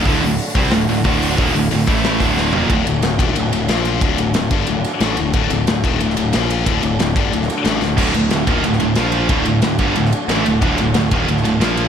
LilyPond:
<<
  \new Staff \with { instrumentName = "String section" } { \time 4/4 \tempo 4 = 182 <d a d' fis'>1~ | <d a d' fis'>4. <e e'>4 <d d' fis'>4. | <d a d' fis'>2. <f bes f'>4 | <d a d' fis'>1~ |
<d a d' fis'>2. <f bes f'>4 | <d a d' fis'>1~ | <d a d' fis'>2. <f bes f'>4 | <d a d' fis'>1~ |
<d a d' fis'>2. <f bes f'>4 | }
  \new Staff \with { instrumentName = "Distorted electric guitar" } { \clef bass \time 4/4 <d, a, d>8 <d, a,>8 r8 <c g c'>8 <d, a,>8 <d, a,>8 <d, a, d>4 | <ees, bes, ees>8 <d, a,>8 <d, a,>8 <a, e a>4 <d, a, d>4 <ees, bes, ees>8 | <d, a, d>8 <d, a,>8 <d, a,>8 <ees, bes, ees>8 <d, a,>8 <d, a,>8 <bes, f bes>4 | <d, a, d>8 <d, a,>8 <d, a,>8 <g, d g>8 <d, a,>8 r8 <a, e a>8 <d, a,>8 |
<d, a, d>8 <d, a,>8 <d, a,>8 <ees, bes, ees>8 <d, a,>8 <d, a,>8 <bes, f bes>4 | <d, a, d>8 <d, a,>8 <d, a,>8 <g, d g>8 <d, a,>8 r8 <a, e a>8 <d, a,>8 | <d, a, d>8 <d, a,>8 <d, a,>8 <ees, bes, ees>8 <d, a,>8 <d, a,>8 <bes, f bes>4 | <d, a, d>8 <d, a,>8 <d, a,>8 <g, d g>8 <d, a,>8 r8 <a, e a>8 <d, a,>8 |
<d, a, d>8 <d, a,>8 <d, a,>8 <ees, bes, ees>8 <d, a,>8 <d, a,>8 <bes, f bes>4 | }
  \new Staff \with { instrumentName = "Distorted electric guitar" } { \clef bass \time 4/4 <d, a, d>8 <d, a,>8 r8 <c g c'>8 <d, a,>8 <d, a,>8 <d, a, d>4 | <ees, bes, ees>8 <d, a,>8 <d, a,>8 <a, e a>4 <d, a, d>4 <ees, bes, ees>8 | r1 | r1 |
r1 | r1 | <d, a, d>8 <d, a,>8 <d, a,>8 <ees, bes, ees>8 <d, a,>8 <d, a,>8 <bes, f bes>4 | <d, a, d>8 <d, a,>8 <d, a,>8 <g, d g>8 <d, a,>8 r8 <a, e a>8 <d, a,>8 |
<d, a, d>8 <d, a,>8 <d, a,>8 <ees, bes, ees>8 <d, a,>8 <d, a,>8 <bes, f bes>4 | }
  \new Staff \with { instrumentName = "Picked electric bass" } { \clef bass \time 4/4 d,,8 d,,8 r8 c,8 d,,8 d,,8 d,,4 | ees,,8 d,,8 d,,8 a,,4 d,,4 ees,,8 | d,,8 d,,8 d,,8 ees,,8 d,,8 d,,8 bes,,4 | d,,8 d,,8 d,,8 g,,8 d,,8 r8 a,,8 d,,8 |
d,,8 d,,8 d,,8 ees,,8 d,,8 d,,8 bes,,4 | d,,8 d,,8 d,,8 g,,8 d,,8 r8 a,,8 d,,8 | d,,8 d,,8 d,,8 ees,,8 d,,8 d,,8 bes,,4 | d,,8 d,,8 d,,8 g,,8 d,,8 r8 a,,8 d,,8 |
d,,8 d,,8 d,,8 ees,,8 d,,8 d,,8 bes,,4 | }
  \new DrumStaff \with { instrumentName = "Drums" } \drummode { \time 4/4 <hho bd>8 hho8 hho8 bd8 <hho sn>8 hho8 <hho bd>8 hho8 | <hho bd>8 hho8 hho8 <hho bd sn>8 <hho sn>8 <hho bd>8 sn8 tomfh8 | <bd cymr>8 cymr8 <cymr sn>8 <bd cymr>8 cymr8 cymr8 <cymr sn>8 cymr8 | <bd cymr>8 cymr8 <cymr sn>8 <bd cymr>8 cymr8 <cymr sn>8 <cymr sn>8 cymr8 |
<bd cymr>8 cymr8 <cymr sn>8 <bd cymr>8 cymr16 sn16 cymr8 <cymr sn>8 cymr8 | <bd cymr>8 cymr8 <cymr sn>8 <bd cymr>8 cymr16 sn16 <cymr sn>8 <cymr sn>8 sn8 | <cymc bd>8 cymr8 <cymr sn>8 <bd cymr>8 cymr16 sn16 cymr8 <cymr sn>8 cymr8 | <bd cymr>8 cymr8 <cymr sn>8 <bd cymr>8 cymr16 sn16 cymr8 <cymr sn>8 cymr8 |
<bd cymr>8 cymr8 <cymr sn>8 <bd cymr>8 cymr16 sn16 cymr8 <cymr sn>8 cymr8 | }
>>